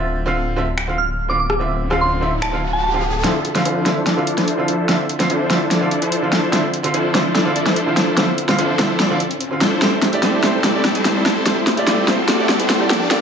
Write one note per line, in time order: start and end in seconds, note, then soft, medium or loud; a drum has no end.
0.00 3.22 D1 medium
0.00 0.24 D3 medium
0.00 0.24 C4 medium
0.00 0.24 F4 medium
0.00 0.25 E5 medium
0.00 riser medium
0.26 0.54 D3 medium
0.26 0.55 C4 medium
0.26 0.55 F4 medium
0.26 0.55 F5 loud
0.56 0.64 D3 medium
0.56 0.64 C4 medium
0.56 0.65 F4 medium
0.56 0.65 E5 loud
0.78 finger snap medium
0.87 0.95 D3 medium
0.87 0.95 C4 medium
0.87 0.95 F4 medium
0.87 0.96 F5 medium
0.98 1.12 F6 medium
1.28 1.36 D3 medium
1.28 1.36 C4 medium
1.28 1.36 F4 medium
1.28 1.37 F5 medium
1.28 1.37 D6 medium
1.39 1.54 D6 medium
1.50 cross-stick medium
1.59 1.88 D3 medium
1.59 1.88 C4 medium
1.59 1.89 F4 medium
1.59 1.89 E5 medium
1.90 2.19 D3 loud
1.90 2.19 C4 medium
1.90 2.19 F4 medium
1.90 2.20 F5 loud
1.90 cross-stick medium
2.01 2.15 C6 medium
2.21 2.28 D3 medium
2.21 2.29 C4 medium
2.21 2.29 F4 medium
2.21 2.29 E5 loud
2.42 2.56 A5 medium
2.42 finger snap medium
2.52 2.59 D3 medium
2.52 2.59 C4 medium
2.52 2.60 F4 medium
2.52 2.60 F5 medium
2.73 2.81 A5 medium
2.83 3.24 A5 medium
2.93 3.00 D3 medium
2.93 3.01 C4 medium
2.93 3.01 F4 medium
2.93 3.01 F5 medium
3.23 3.52 D3 medium
3.23 3.35 F3 medium
3.23 3.53 C4 medium
3.23 3.35 D4 medium
3.23 3.35 E4 medium
3.23 3.53 F4 medium
3.23 3.35 A4 medium
3.23 3.35 C5 loud
3.23 3.53 E5 medium
3.23 snare soft
3.23 closed hi-hat medium
3.23 riser medium
3.45 closed hi-hat medium
3.54 3.83 D3 loud
3.54 3.83 C4 medium
3.54 3.84 F4 medium
3.54 3.84 F5 loud
3.54 snare soft
3.54 closed hi-hat medium
3.65 4.04 F3 medium
3.65 4.04 D4 medium
3.65 4.04 E4 medium
3.65 4.04 A4 medium
3.65 4.04 C5 medium
3.65 closed hi-hat medium
3.85 3.93 D3 medium
3.85 3.93 C4 medium
3.85 3.94 F4 medium
3.85 3.94 E5 loud
3.85 snare soft
3.85 closed hi-hat medium
4.06 4.25 F3 medium
4.06 4.25 D4 medium
4.06 4.25 E4 medium
4.06 4.25 A4 medium
4.06 4.25 D5 medium
4.06 snare soft
4.06 closed hi-hat medium
4.16 4.24 D3 medium
4.16 4.24 C4 medium
4.16 4.24 F4 medium
4.16 4.25 F5 medium
4.27 4.35 F3 medium
4.27 4.35 D4 medium
4.27 4.35 E4 medium
4.27 4.35 A4 medium
4.27 4.35 D5 medium
4.27 closed hi-hat medium
4.37 4.66 F3 medium
4.37 4.66 D4 medium
4.37 4.66 E4 medium
4.37 4.66 A4 medium
4.37 4.66 C5 medium
4.37 snare soft
4.37 closed hi-hat medium
4.48 closed hi-hat medium
4.57 4.65 D3 medium
4.57 4.65 C4 medium
4.57 4.65 F4 medium
4.57 4.66 F5 medium
4.68 4.86 F3 medium
4.68 4.86 D4 medium
4.68 4.86 E4 medium
4.68 4.86 A4 medium
4.68 4.86 C5 medium
4.68 closed hi-hat medium
4.88 5.17 D3 medium
4.88 4.99 F3 medium
4.88 5.17 C4 medium
4.88 4.99 D4 medium
4.88 4.99 E4 medium
4.88 5.18 F4 medium
4.88 4.99 A4 medium
4.88 4.99 C5 loud
4.88 5.18 E5 medium
4.88 snare medium
4.88 closed hi-hat medium
5.09 closed hi-hat medium
5.19 5.47 D3 loud
5.19 5.48 C4 medium
5.19 5.48 F4 medium
5.19 5.48 F5 loud
5.19 snare soft
5.19 closed hi-hat medium
5.30 5.69 F3 medium
5.30 5.69 D4 medium
5.30 5.69 E4 medium
5.30 5.69 A4 medium
5.30 5.69 C5 medium
5.30 closed hi-hat medium
5.49 5.57 D3 medium
5.49 5.58 C4 medium
5.49 5.58 F4 medium
5.49 5.58 E5 loud
5.49 snare medium
5.49 closed hi-hat medium
5.71 5.89 F3 medium
5.71 5.89 D4 medium
5.71 5.89 E4 medium
5.71 5.89 A4 medium
5.71 5.89 D5 medium
5.71 snare medium
5.71 closed hi-hat medium
5.81 5.88 D3 medium
5.81 5.88 C4 medium
5.81 5.89 F4 medium
5.81 5.89 F5 medium
5.91 6.00 F3 medium
5.91 5.99 D4 medium
5.91 5.99 E4 medium
5.91 5.99 A4 medium
5.91 5.99 D5 medium
5.91 closed hi-hat medium
6.02 6.30 F3 medium
6.02 6.30 D4 medium
6.02 6.30 E4 medium
6.02 6.30 A4 medium
6.02 6.30 C5 medium
6.02 closed hi-hat medium
6.12 closed hi-hat medium
6.22 6.29 D3 medium
6.22 6.29 C4 medium
6.22 6.30 F4 medium
6.22 6.30 F5 medium
6.32 6.51 F3 medium
6.32 6.51 D4 medium
6.32 6.51 E4 medium
6.32 6.51 A4 medium
6.32 6.51 C5 medium
6.32 snare medium
6.32 closed hi-hat medium
6.52 6.81 D3 medium
6.52 6.64 F3 medium
6.52 6.82 C4 medium
6.52 6.64 D4 medium
6.52 6.64 E4 medium
6.52 6.82 F4 medium
6.52 6.64 A4 medium
6.52 6.64 C5 loud
6.52 6.82 E5 medium
6.52 snare medium
6.52 closed hi-hat medium
6.74 closed hi-hat medium
6.83 7.12 D3 loud
6.83 7.12 C4 medium
6.83 7.12 F4 medium
6.83 7.13 F5 loud
6.83 closed hi-hat medium
6.94 7.33 F3 medium
6.94 7.33 D4 medium
6.94 7.33 E4 medium
6.94 7.33 A4 medium
6.94 7.33 C5 medium
6.94 closed hi-hat medium
7.14 7.22 D3 medium
7.14 7.22 C4 medium
7.14 7.22 F4 medium
7.14 7.23 E5 loud
7.14 snare medium
7.14 closed hi-hat medium
7.35 7.53 F3 medium
7.35 7.53 D4 medium
7.35 7.53 E4 medium
7.35 7.53 A4 medium
7.35 7.53 D5 medium
7.35 snare medium
7.35 closed hi-hat medium
7.45 7.52 D3 medium
7.45 7.53 C4 medium
7.45 7.53 F4 medium
7.45 7.53 F5 medium
7.56 7.64 F3 medium
7.56 7.64 D4 medium
7.56 7.64 E4 medium
7.56 7.64 A4 medium
7.56 7.64 D5 loud
7.56 closed hi-hat medium
7.66 7.95 F3 medium
7.66 7.94 D4 medium
7.66 7.95 E4 medium
7.66 7.95 A4 medium
7.66 7.95 C5 medium
7.66 snare medium
7.66 closed hi-hat medium
7.76 closed hi-hat medium
7.86 7.93 D3 medium
7.86 7.94 C4 medium
7.86 7.94 F4 medium
7.86 7.94 F5 medium
7.97 8.15 F3 medium
7.97 8.15 D4 medium
7.97 8.15 E4 medium
7.97 8.15 A4 medium
7.97 8.15 C5 medium
7.97 snare medium
7.97 closed hi-hat medium
8.17 8.46 D3 medium
8.17 8.28 F3 medium
8.17 8.46 C4 medium
8.17 8.28 D4 medium
8.17 8.28 E4 medium
8.17 8.46 F4 medium
8.17 8.28 A4 medium
8.17 8.28 C5 loud
8.17 8.47 E5 medium
8.17 snare medium
8.17 closed hi-hat medium
8.38 closed hi-hat medium
8.48 8.76 D3 loud
8.48 8.77 C4 medium
8.48 8.77 F4 medium
8.48 8.77 F5 loud
8.48 snare medium
8.48 closed hi-hat medium
8.58 8.97 F3 medium
8.58 8.97 D4 medium
8.58 8.97 E4 medium
8.58 8.97 A4 medium
8.58 8.97 C5 medium
8.58 closed hi-hat medium
8.78 8.86 D3 medium
8.78 8.86 C4 medium
8.78 8.87 F4 medium
8.78 8.87 E5 loud
8.78 snare medium
8.78 closed hi-hat medium
9.00 9.18 F3 medium
9.00 9.18 D4 medium
9.00 9.18 E4 medium
9.00 9.18 A4 medium
9.00 9.18 D5 medium
9.00 snare medium
9.00 closed hi-hat medium
9.10 9.17 D3 medium
9.10 9.17 C4 medium
9.10 9.17 F4 medium
9.10 9.18 F5 medium
9.20 closed hi-hat medium
9.31 closed hi-hat medium
9.41 closed hi-hat medium
9.51 9.58 D3 medium
9.51 9.58 C4 medium
9.51 9.59 F4 medium
9.51 9.59 F5 medium
9.61 9.80 F3 medium
9.61 9.80 D4 medium
9.61 9.80 E4 medium
9.61 9.79 A4 medium
9.61 9.79 C5 medium
9.61 snare medium
9.61 closed hi-hat medium
9.81 9.92 G3 medium
9.81 10.10 A3 medium
9.81 9.92 C4 medium
9.81 10.10 E4 medium
9.81 9.92 E4 medium
9.81 10.11 G4 medium
9.81 9.92 A4 medium
9.81 9.92 C5 loud
9.81 10.11 C5 medium
9.81 snare medium
9.81 closed hi-hat medium
10.02 snare medium
10.02 closed hi-hat medium
10.12 10.41 A3 loud
10.12 10.41 E4 medium
10.12 10.41 G4 medium
10.12 10.42 D5 loud
10.12 closed hi-hat medium
10.23 10.62 G3 medium
10.23 10.62 C4 medium
10.23 10.62 E4 medium
10.23 10.62 A4 medium
10.23 10.62 C5 medium
10.23 snare medium
10.23 closed hi-hat medium
10.43 10.50 A3 medium
10.43 10.51 E4 medium
10.43 10.51 G4 medium
10.43 10.51 C5 loud
10.43 snare medium
10.43 closed hi-hat medium
10.64 10.82 G3 medium
10.64 10.82 C4 medium
10.64 10.82 E4 medium
10.64 10.82 A4 medium
10.64 10.82 D5 medium
10.64 snare medium
10.64 closed hi-hat medium
10.74 10.81 A3 medium
10.74 10.81 E4 medium
10.74 10.82 G4 medium
10.74 10.82 D5 medium
10.85 10.93 G3 medium
10.85 10.93 C4 medium
10.85 10.93 E4 medium
10.85 10.93 A4 medium
10.85 10.93 D5 medium
10.85 snare medium
10.85 closed hi-hat medium
10.95 11.23 G3 medium
10.95 11.23 C4 medium
10.95 11.23 E4 medium
10.95 11.23 A4 medium
10.95 11.23 C5 medium
10.95 closed hi-hat medium
11.05 snare medium
11.05 closed hi-hat medium
11.15 11.22 A3 medium
11.15 11.22 E4 medium
11.15 11.23 G4 medium
11.15 11.23 D5 medium
11.26 11.44 G3 medium
11.26 11.44 C4 medium
11.26 11.44 E4 medium
11.26 11.44 A4 medium
11.26 11.44 C5 medium
11.26 snare medium
11.26 closed hi-hat medium
11.45 11.57 G3 medium
11.45 11.74 A3 medium
11.45 11.57 C4 medium
11.45 11.75 E4 medium
11.45 11.57 E4 medium
11.45 11.75 G4 medium
11.45 11.57 A4 medium
11.45 11.57 C5 loud
11.45 11.75 C5 medium
11.45 snare medium
11.45 closed hi-hat medium
11.67 snare medium
11.67 closed hi-hat medium
11.76 12.05 A3 loud
11.76 12.05 E4 medium
11.76 12.06 G4 medium
11.76 12.06 D5 loud
11.76 closed hi-hat medium
11.87 12.26 G3 medium
11.87 12.26 C4 medium
11.87 12.26 E4 medium
11.87 12.26 A4 medium
11.87 12.26 C5 medium
11.87 snare medium
11.87 closed hi-hat medium
12.07 12.15 A3 medium
12.07 12.15 E4 medium
12.07 12.15 G4 medium
12.07 12.16 C5 loud
12.07 snare medium
12.07 closed hi-hat medium
12.28 12.47 G3 medium
12.28 12.47 C4 medium
12.28 12.47 E4 medium
12.28 12.47 A4 medium
12.28 12.47 D5 medium
12.28 snare medium
12.28 closed hi-hat medium
12.38 12.46 A3 medium
12.38 12.46 E4 medium
12.38 12.46 G4 medium
12.38 12.47 D5 loud
12.49 12.57 G3 medium
12.49 12.57 C4 medium
12.49 12.57 E4 medium
12.49 12.57 A4 medium
12.49 12.57 D5 medium
12.49 snare medium
12.49 closed hi-hat medium
12.60 12.88 G3 medium
12.60 12.88 C4 medium
12.60 12.88 E4 medium
12.60 12.88 A4 medium
12.60 12.88 C5 medium
12.60 closed hi-hat medium
12.70 snare medium
12.70 closed hi-hat medium
12.79 12.87 A3 medium
12.79 12.87 E4 medium
12.79 12.87 G4 medium
12.79 12.88 D5 medium
12.90 13.08 F3 medium
12.90 13.08 A#3 medium
12.90 13.08 D4 medium
12.90 13.08 A4 medium
12.90 13.08 D5 medium
12.90 snare medium
12.90 closed hi-hat medium
13.10 13.21 F3 medium
13.10 13.21 A#3 medium
13.10 13.21 D4 medium
13.10 13.21 F4 medium
13.10 13.21 A4 medium
13.10 13.21 D5 loud
13.10 13.21 D5 medium
13.10 snare loud
13.10 closed hi-hat medium